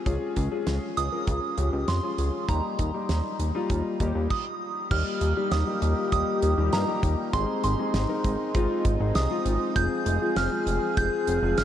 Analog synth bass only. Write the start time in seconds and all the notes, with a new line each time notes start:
0.06 C#2
0.37 C#2
0.67 C#2
0.97 C#2
1.28 C#2
1.58 C#2
1.73 C#2
1.88 F2
2.18 C#2
2.49 D#2
2.79 D#2
3.09 D#2
3.39 D#2
3.70 D#2
4.00 D#2
4.15 D#2
4.91 D#2
5.21 D#2
5.52 D#2
5.82 D#2
6.12 D#2
6.43 D#2
6.58 D#2
6.73 G2
7.03 D#2
7.33 G#1
7.64 G#1
7.94 G#1
8.24 G#1
8.55 G#1
8.85 G#1
9.00 G#1
9.15 C2
9.46 G#1
9.76 F1
10.06 F1
10.36 F1
10.67 F1
10.97 F1
11.27 F1
11.43 F1
11.58 G#1